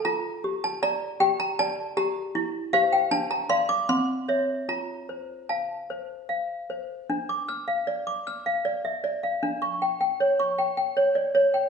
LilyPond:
\new Staff \with { instrumentName = "Toy piano" } { \time 3/4 \key f \major \tempo 4 = 77 << { bes''8. a''16 bes''8 g''16 bes''16 a''8 bes''8 | r8 f''16 g''16 a''16 bes''16 c'''16 d'''16 c'''4 | bes''4 a''4. r8 | \key d \minor r2. |
r2. | } \\ { f'8 g'8 d''8 g'8 d''8 g'8 | e'8 <g' c''>8 d'8 <d'' f''>8 c'8 <des'' e''>8 | f'8 c''8 f''8 c''8 f''8 c''8 | d'16 d'''16 f'''16 f''16 d''16 d'''16 f'''16 f''16 d''16 e''16 d''16 f''16 |
d'16 cis'''16 g''16 g''16 cis''16 cis'''16 g''16 g''16 cis''16 d''16 cis''16 g''16 | } >> }